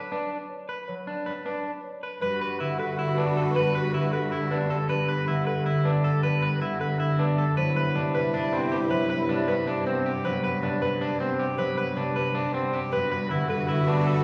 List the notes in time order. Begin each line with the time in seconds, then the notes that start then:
Already playing: F#3 B4
0.12 D4 B4
0.50 C#5
0.69 B4
0.88 F#3 C#5
1.07 D4
1.26 B4
1.45 D4 B4
1.84 C#5
2.03 B4
2.21 G2 G3 F#4 B4
2.41 B4
2.60 D3 E4
2.79 A4 B4
2.99 E4
3.17 B3 D4 B4
3.37 A4
3.55 G3 B4
3.75 B4
3.94 D3 E4
4.13 A4 B4
4.32 E4
4.51 B3 D4 B4
4.70 A4
4.89 G3 B4
5.09 B4
5.27 D3 E4
5.47 A4 B4
5.66 E4
5.85 B3 D4 B4
6.04 A4
6.23 G3 B4
6.42 B4
6.61 D3 E4
6.80 A4 B4
7.00 E4
7.19 B3 D4 B4
7.38 A4
7.57 G2 F#3 E4 B4 C5
7.76 B4
7.95 C3 D4
8.14 B4
8.34 D4
8.52 B3 C4 C5
8.72 G4
8.91 F#3 B4 C5
9.10 B4
9.29 C3 D4
9.48 B4
9.67 D4
9.86 B3 C4 C5
10.06 G4
10.24 F#3 B4 C5
10.44 B4
10.62 C3 D4
10.82 B4
11.01 D4
11.19 B3 C4 C5
11.39 G4
11.58 F#3 B4 C5
11.78 B4
11.96 C3 D4
12.15 B4
12.35 D4
12.54 B3 C4 C5
12.73 G4
12.92 G2 G3 F#4 B4
13.12 B4
13.30 D3 E4
13.49 A4 B4
13.68 E4
13.87 B3 D4 B4
14.07 A4